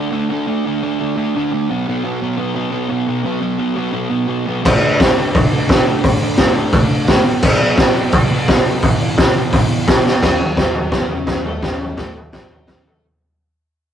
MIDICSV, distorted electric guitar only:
0, 0, Header, 1, 3, 480
1, 0, Start_track
1, 0, Tempo, 348230
1, 649, Time_signature, 4, 2, 24, 8
1, 14089, Tempo, 351494
1, 19162, End_track
2, 0, Start_track
2, 0, Title_t, "Distorted electric guitar"
2, 0, Program_c, 0, 30
2, 0, Note_on_c, 0, 50, 100
2, 0, Note_on_c, 0, 62, 92
2, 142, Note_off_c, 0, 50, 0
2, 153, Note_on_c, 0, 57, 103
2, 158, Note_on_c, 0, 50, 98
2, 159, Note_off_c, 0, 62, 0
2, 175, Note_on_c, 0, 62, 100
2, 392, Note_off_c, 0, 50, 0
2, 409, Note_on_c, 0, 50, 80
2, 414, Note_off_c, 0, 57, 0
2, 415, Note_off_c, 0, 62, 0
2, 430, Note_on_c, 0, 57, 86
2, 432, Note_on_c, 0, 62, 91
2, 625, Note_off_c, 0, 50, 0
2, 637, Note_off_c, 0, 62, 0
2, 642, Note_off_c, 0, 57, 0
2, 642, Note_on_c, 0, 50, 86
2, 653, Note_on_c, 0, 62, 127
2, 659, Note_on_c, 0, 57, 110
2, 881, Note_off_c, 0, 50, 0
2, 885, Note_off_c, 0, 57, 0
2, 897, Note_on_c, 0, 50, 92
2, 898, Note_off_c, 0, 62, 0
2, 901, Note_on_c, 0, 57, 90
2, 915, Note_on_c, 0, 62, 103
2, 1117, Note_off_c, 0, 50, 0
2, 1129, Note_off_c, 0, 57, 0
2, 1134, Note_off_c, 0, 62, 0
2, 1134, Note_on_c, 0, 50, 89
2, 1146, Note_on_c, 0, 57, 108
2, 1150, Note_on_c, 0, 62, 114
2, 1356, Note_off_c, 0, 50, 0
2, 1363, Note_off_c, 0, 57, 0
2, 1368, Note_off_c, 0, 62, 0
2, 1373, Note_on_c, 0, 50, 99
2, 1380, Note_on_c, 0, 57, 107
2, 1384, Note_on_c, 0, 62, 120
2, 1591, Note_off_c, 0, 50, 0
2, 1600, Note_off_c, 0, 57, 0
2, 1603, Note_off_c, 0, 62, 0
2, 1608, Note_on_c, 0, 50, 101
2, 1617, Note_on_c, 0, 57, 124
2, 1619, Note_on_c, 0, 62, 105
2, 1855, Note_off_c, 0, 50, 0
2, 1855, Note_off_c, 0, 57, 0
2, 1869, Note_off_c, 0, 62, 0
2, 1871, Note_on_c, 0, 50, 98
2, 1872, Note_on_c, 0, 57, 99
2, 1886, Note_on_c, 0, 62, 100
2, 2081, Note_off_c, 0, 50, 0
2, 2095, Note_off_c, 0, 57, 0
2, 2098, Note_on_c, 0, 50, 87
2, 2103, Note_off_c, 0, 62, 0
2, 2111, Note_on_c, 0, 57, 108
2, 2119, Note_on_c, 0, 62, 105
2, 2320, Note_off_c, 0, 50, 0
2, 2326, Note_off_c, 0, 57, 0
2, 2330, Note_off_c, 0, 62, 0
2, 2345, Note_on_c, 0, 47, 95
2, 2347, Note_on_c, 0, 54, 97
2, 2354, Note_on_c, 0, 59, 109
2, 2562, Note_off_c, 0, 47, 0
2, 2579, Note_on_c, 0, 47, 101
2, 2587, Note_off_c, 0, 54, 0
2, 2592, Note_on_c, 0, 54, 112
2, 2595, Note_off_c, 0, 59, 0
2, 2600, Note_on_c, 0, 59, 118
2, 2793, Note_off_c, 0, 47, 0
2, 2809, Note_on_c, 0, 47, 105
2, 2815, Note_off_c, 0, 54, 0
2, 2817, Note_off_c, 0, 59, 0
2, 2820, Note_on_c, 0, 54, 104
2, 2823, Note_on_c, 0, 59, 102
2, 3028, Note_off_c, 0, 47, 0
2, 3044, Note_on_c, 0, 47, 98
2, 3053, Note_off_c, 0, 54, 0
2, 3058, Note_on_c, 0, 54, 113
2, 3063, Note_off_c, 0, 59, 0
2, 3069, Note_on_c, 0, 59, 115
2, 3256, Note_off_c, 0, 47, 0
2, 3264, Note_off_c, 0, 54, 0
2, 3269, Note_on_c, 0, 54, 109
2, 3272, Note_on_c, 0, 47, 101
2, 3283, Note_off_c, 0, 59, 0
2, 3288, Note_on_c, 0, 59, 110
2, 3501, Note_off_c, 0, 47, 0
2, 3509, Note_off_c, 0, 59, 0
2, 3513, Note_off_c, 0, 54, 0
2, 3517, Note_on_c, 0, 47, 97
2, 3518, Note_on_c, 0, 54, 102
2, 3526, Note_on_c, 0, 59, 120
2, 3713, Note_off_c, 0, 47, 0
2, 3727, Note_off_c, 0, 59, 0
2, 3729, Note_on_c, 0, 47, 96
2, 3738, Note_off_c, 0, 54, 0
2, 3743, Note_on_c, 0, 54, 92
2, 3744, Note_on_c, 0, 59, 113
2, 3973, Note_off_c, 0, 47, 0
2, 3989, Note_on_c, 0, 47, 102
2, 3990, Note_off_c, 0, 54, 0
2, 3990, Note_off_c, 0, 59, 0
2, 3996, Note_on_c, 0, 54, 98
2, 4007, Note_on_c, 0, 59, 103
2, 4216, Note_off_c, 0, 47, 0
2, 4229, Note_off_c, 0, 59, 0
2, 4233, Note_on_c, 0, 47, 83
2, 4239, Note_off_c, 0, 54, 0
2, 4244, Note_on_c, 0, 54, 80
2, 4245, Note_on_c, 0, 59, 80
2, 4443, Note_off_c, 0, 47, 0
2, 4460, Note_on_c, 0, 47, 102
2, 4468, Note_off_c, 0, 59, 0
2, 4469, Note_off_c, 0, 54, 0
2, 4474, Note_on_c, 0, 54, 127
2, 4485, Note_on_c, 0, 59, 121
2, 4685, Note_off_c, 0, 47, 0
2, 4695, Note_off_c, 0, 59, 0
2, 4702, Note_off_c, 0, 54, 0
2, 4702, Note_on_c, 0, 47, 101
2, 4707, Note_on_c, 0, 54, 104
2, 4711, Note_on_c, 0, 59, 94
2, 4924, Note_off_c, 0, 47, 0
2, 4935, Note_off_c, 0, 54, 0
2, 4935, Note_off_c, 0, 59, 0
2, 4940, Note_on_c, 0, 54, 112
2, 4941, Note_on_c, 0, 47, 107
2, 4952, Note_on_c, 0, 59, 109
2, 5151, Note_off_c, 0, 47, 0
2, 5167, Note_on_c, 0, 47, 94
2, 5182, Note_off_c, 0, 59, 0
2, 5183, Note_off_c, 0, 54, 0
2, 5189, Note_on_c, 0, 54, 102
2, 5198, Note_on_c, 0, 59, 104
2, 5390, Note_off_c, 0, 47, 0
2, 5404, Note_off_c, 0, 59, 0
2, 5406, Note_on_c, 0, 47, 104
2, 5417, Note_off_c, 0, 54, 0
2, 5420, Note_on_c, 0, 59, 123
2, 5423, Note_on_c, 0, 54, 108
2, 5625, Note_off_c, 0, 47, 0
2, 5638, Note_off_c, 0, 54, 0
2, 5642, Note_on_c, 0, 47, 83
2, 5644, Note_on_c, 0, 54, 96
2, 5649, Note_off_c, 0, 59, 0
2, 5665, Note_on_c, 0, 59, 101
2, 5873, Note_off_c, 0, 47, 0
2, 5886, Note_off_c, 0, 59, 0
2, 5890, Note_on_c, 0, 47, 105
2, 5892, Note_off_c, 0, 54, 0
2, 5897, Note_on_c, 0, 54, 100
2, 5902, Note_on_c, 0, 59, 99
2, 6136, Note_off_c, 0, 47, 0
2, 6152, Note_on_c, 0, 47, 91
2, 6160, Note_off_c, 0, 59, 0
2, 6163, Note_off_c, 0, 54, 0
2, 6168, Note_on_c, 0, 54, 92
2, 6177, Note_on_c, 0, 59, 87
2, 6364, Note_off_c, 0, 47, 0
2, 6370, Note_on_c, 0, 50, 103
2, 6375, Note_off_c, 0, 54, 0
2, 6380, Note_on_c, 0, 57, 108
2, 6385, Note_off_c, 0, 59, 0
2, 6391, Note_on_c, 0, 62, 109
2, 6628, Note_off_c, 0, 50, 0
2, 6634, Note_on_c, 0, 50, 99
2, 6635, Note_off_c, 0, 62, 0
2, 6638, Note_off_c, 0, 57, 0
2, 6641, Note_on_c, 0, 62, 109
2, 6643, Note_on_c, 0, 57, 106
2, 6868, Note_off_c, 0, 50, 0
2, 6873, Note_on_c, 0, 50, 98
2, 6885, Note_off_c, 0, 57, 0
2, 6888, Note_off_c, 0, 62, 0
2, 6890, Note_on_c, 0, 57, 101
2, 6893, Note_on_c, 0, 62, 103
2, 7095, Note_off_c, 0, 50, 0
2, 7111, Note_on_c, 0, 50, 97
2, 7112, Note_off_c, 0, 57, 0
2, 7115, Note_off_c, 0, 62, 0
2, 7129, Note_on_c, 0, 57, 87
2, 7131, Note_on_c, 0, 62, 110
2, 7345, Note_off_c, 0, 50, 0
2, 7347, Note_off_c, 0, 57, 0
2, 7355, Note_off_c, 0, 62, 0
2, 7361, Note_on_c, 0, 50, 106
2, 7364, Note_on_c, 0, 57, 112
2, 7372, Note_on_c, 0, 62, 120
2, 7587, Note_off_c, 0, 50, 0
2, 7593, Note_off_c, 0, 57, 0
2, 7595, Note_off_c, 0, 62, 0
2, 7604, Note_on_c, 0, 50, 95
2, 7609, Note_on_c, 0, 57, 110
2, 7612, Note_on_c, 0, 62, 90
2, 7811, Note_off_c, 0, 50, 0
2, 7820, Note_off_c, 0, 57, 0
2, 7828, Note_on_c, 0, 50, 101
2, 7837, Note_on_c, 0, 57, 98
2, 7840, Note_off_c, 0, 62, 0
2, 7857, Note_on_c, 0, 62, 97
2, 8059, Note_off_c, 0, 50, 0
2, 8068, Note_off_c, 0, 57, 0
2, 8075, Note_on_c, 0, 50, 81
2, 8077, Note_off_c, 0, 62, 0
2, 8084, Note_on_c, 0, 57, 92
2, 8094, Note_on_c, 0, 62, 83
2, 8291, Note_off_c, 0, 57, 0
2, 8299, Note_off_c, 0, 50, 0
2, 8308, Note_on_c, 0, 57, 109
2, 8309, Note_off_c, 0, 62, 0
2, 8315, Note_on_c, 0, 50, 112
2, 8325, Note_on_c, 0, 62, 127
2, 8545, Note_off_c, 0, 50, 0
2, 8553, Note_off_c, 0, 62, 0
2, 8554, Note_off_c, 0, 57, 0
2, 8561, Note_on_c, 0, 50, 93
2, 8569, Note_on_c, 0, 62, 110
2, 8570, Note_on_c, 0, 57, 105
2, 8765, Note_off_c, 0, 57, 0
2, 8766, Note_off_c, 0, 50, 0
2, 8782, Note_on_c, 0, 57, 107
2, 8783, Note_on_c, 0, 50, 105
2, 8789, Note_off_c, 0, 62, 0
2, 8806, Note_on_c, 0, 62, 107
2, 8993, Note_off_c, 0, 50, 0
2, 8995, Note_off_c, 0, 57, 0
2, 9004, Note_off_c, 0, 62, 0
2, 9010, Note_on_c, 0, 50, 105
2, 9011, Note_on_c, 0, 57, 99
2, 9021, Note_on_c, 0, 62, 103
2, 9262, Note_off_c, 0, 50, 0
2, 9274, Note_off_c, 0, 62, 0
2, 9276, Note_off_c, 0, 57, 0
2, 9279, Note_on_c, 0, 50, 107
2, 9291, Note_on_c, 0, 62, 108
2, 9292, Note_on_c, 0, 57, 114
2, 9471, Note_off_c, 0, 50, 0
2, 9475, Note_off_c, 0, 57, 0
2, 9485, Note_off_c, 0, 62, 0
2, 9488, Note_on_c, 0, 50, 96
2, 9492, Note_on_c, 0, 57, 90
2, 9502, Note_on_c, 0, 62, 94
2, 9730, Note_off_c, 0, 50, 0
2, 9746, Note_on_c, 0, 50, 94
2, 9750, Note_off_c, 0, 57, 0
2, 9751, Note_off_c, 0, 62, 0
2, 9767, Note_on_c, 0, 57, 100
2, 9767, Note_on_c, 0, 62, 100
2, 9983, Note_off_c, 0, 50, 0
2, 9990, Note_off_c, 0, 57, 0
2, 9990, Note_off_c, 0, 62, 0
2, 9990, Note_on_c, 0, 47, 82
2, 9996, Note_on_c, 0, 54, 104
2, 9996, Note_on_c, 0, 59, 102
2, 10219, Note_off_c, 0, 47, 0
2, 10219, Note_off_c, 0, 54, 0
2, 10235, Note_on_c, 0, 54, 102
2, 10236, Note_on_c, 0, 47, 97
2, 10241, Note_off_c, 0, 59, 0
2, 10246, Note_on_c, 0, 59, 120
2, 10471, Note_off_c, 0, 47, 0
2, 10486, Note_off_c, 0, 54, 0
2, 10487, Note_on_c, 0, 47, 90
2, 10502, Note_off_c, 0, 59, 0
2, 10503, Note_on_c, 0, 54, 96
2, 10508, Note_on_c, 0, 59, 96
2, 10716, Note_off_c, 0, 47, 0
2, 10726, Note_off_c, 0, 54, 0
2, 10733, Note_on_c, 0, 47, 98
2, 10743, Note_on_c, 0, 54, 108
2, 10750, Note_off_c, 0, 59, 0
2, 10755, Note_on_c, 0, 59, 110
2, 10954, Note_off_c, 0, 47, 0
2, 10960, Note_off_c, 0, 54, 0
2, 10971, Note_on_c, 0, 47, 88
2, 10977, Note_on_c, 0, 54, 103
2, 10991, Note_off_c, 0, 59, 0
2, 10997, Note_on_c, 0, 59, 103
2, 11199, Note_off_c, 0, 47, 0
2, 11206, Note_off_c, 0, 54, 0
2, 11216, Note_on_c, 0, 47, 113
2, 11223, Note_on_c, 0, 54, 96
2, 11224, Note_off_c, 0, 59, 0
2, 11241, Note_on_c, 0, 59, 117
2, 11439, Note_off_c, 0, 47, 0
2, 11448, Note_off_c, 0, 54, 0
2, 11456, Note_on_c, 0, 47, 91
2, 11464, Note_off_c, 0, 59, 0
2, 11464, Note_on_c, 0, 54, 95
2, 11481, Note_on_c, 0, 59, 93
2, 11685, Note_off_c, 0, 47, 0
2, 11696, Note_off_c, 0, 54, 0
2, 11702, Note_on_c, 0, 47, 90
2, 11712, Note_off_c, 0, 59, 0
2, 11713, Note_on_c, 0, 54, 99
2, 11728, Note_on_c, 0, 59, 106
2, 11920, Note_off_c, 0, 54, 0
2, 11927, Note_off_c, 0, 47, 0
2, 11936, Note_on_c, 0, 54, 89
2, 11937, Note_off_c, 0, 59, 0
2, 11944, Note_on_c, 0, 47, 71
2, 11954, Note_on_c, 0, 59, 83
2, 12151, Note_off_c, 0, 47, 0
2, 12158, Note_off_c, 0, 54, 0
2, 12160, Note_on_c, 0, 40, 92
2, 12166, Note_off_c, 0, 59, 0
2, 12167, Note_on_c, 0, 47, 96
2, 12186, Note_on_c, 0, 52, 110
2, 12381, Note_off_c, 0, 40, 0
2, 12387, Note_off_c, 0, 47, 0
2, 12397, Note_on_c, 0, 40, 87
2, 12400, Note_off_c, 0, 52, 0
2, 12403, Note_on_c, 0, 47, 92
2, 12417, Note_on_c, 0, 52, 111
2, 12602, Note_off_c, 0, 40, 0
2, 12615, Note_off_c, 0, 47, 0
2, 12619, Note_on_c, 0, 40, 101
2, 12625, Note_off_c, 0, 52, 0
2, 12632, Note_on_c, 0, 47, 110
2, 12641, Note_on_c, 0, 52, 113
2, 12854, Note_off_c, 0, 47, 0
2, 12859, Note_off_c, 0, 40, 0
2, 12869, Note_off_c, 0, 52, 0
2, 12870, Note_on_c, 0, 47, 99
2, 12876, Note_on_c, 0, 40, 90
2, 12885, Note_on_c, 0, 52, 106
2, 13088, Note_off_c, 0, 40, 0
2, 13105, Note_off_c, 0, 47, 0
2, 13105, Note_off_c, 0, 52, 0
2, 13105, Note_on_c, 0, 40, 110
2, 13121, Note_on_c, 0, 47, 109
2, 13122, Note_on_c, 0, 52, 103
2, 13312, Note_off_c, 0, 40, 0
2, 13328, Note_off_c, 0, 52, 0
2, 13329, Note_on_c, 0, 40, 96
2, 13330, Note_off_c, 0, 47, 0
2, 13344, Note_on_c, 0, 52, 99
2, 13346, Note_on_c, 0, 47, 95
2, 13567, Note_off_c, 0, 40, 0
2, 13581, Note_off_c, 0, 47, 0
2, 13584, Note_on_c, 0, 40, 82
2, 13593, Note_off_c, 0, 52, 0
2, 13597, Note_on_c, 0, 47, 103
2, 13610, Note_on_c, 0, 52, 99
2, 13822, Note_off_c, 0, 40, 0
2, 13827, Note_off_c, 0, 47, 0
2, 13839, Note_on_c, 0, 40, 81
2, 13843, Note_off_c, 0, 52, 0
2, 13844, Note_on_c, 0, 47, 92
2, 13860, Note_on_c, 0, 52, 89
2, 14071, Note_off_c, 0, 40, 0
2, 14074, Note_off_c, 0, 47, 0
2, 14079, Note_on_c, 0, 49, 100
2, 14082, Note_off_c, 0, 52, 0
2, 14092, Note_on_c, 0, 61, 104
2, 14317, Note_off_c, 0, 49, 0
2, 14324, Note_off_c, 0, 61, 0
2, 14558, Note_on_c, 0, 54, 92
2, 14566, Note_on_c, 0, 66, 120
2, 15024, Note_on_c, 0, 59, 96
2, 15035, Note_off_c, 0, 54, 0
2, 15039, Note_off_c, 0, 66, 0
2, 15043, Note_on_c, 0, 71, 109
2, 15269, Note_off_c, 0, 59, 0
2, 15277, Note_on_c, 0, 49, 76
2, 15278, Note_off_c, 0, 71, 0
2, 15292, Note_on_c, 0, 61, 107
2, 15755, Note_off_c, 0, 49, 0
2, 15762, Note_off_c, 0, 61, 0
2, 15769, Note_on_c, 0, 57, 96
2, 15779, Note_on_c, 0, 69, 97
2, 16000, Note_on_c, 0, 49, 92
2, 16001, Note_off_c, 0, 57, 0
2, 16006, Note_off_c, 0, 69, 0
2, 16022, Note_on_c, 0, 61, 105
2, 16477, Note_off_c, 0, 49, 0
2, 16488, Note_off_c, 0, 61, 0
2, 16498, Note_on_c, 0, 57, 95
2, 16510, Note_on_c, 0, 69, 100
2, 16726, Note_off_c, 0, 57, 0
2, 16732, Note_off_c, 0, 69, 0
2, 16981, Note_on_c, 0, 54, 90
2, 16998, Note_on_c, 0, 66, 99
2, 17448, Note_off_c, 0, 54, 0
2, 17456, Note_off_c, 0, 66, 0
2, 17465, Note_on_c, 0, 49, 89
2, 17476, Note_on_c, 0, 61, 96
2, 17690, Note_off_c, 0, 49, 0
2, 17694, Note_on_c, 0, 57, 66
2, 17695, Note_off_c, 0, 61, 0
2, 17710, Note_on_c, 0, 69, 86
2, 17925, Note_off_c, 0, 57, 0
2, 17933, Note_off_c, 0, 69, 0
2, 19162, End_track
3, 0, Start_track
3, 0, Title_t, "Muted distorted electric guitar strokes"
3, 14325, Note_on_c, 9, 29, 56
3, 14462, Note_off_c, 9, 29, 0
3, 19162, End_track
0, 0, End_of_file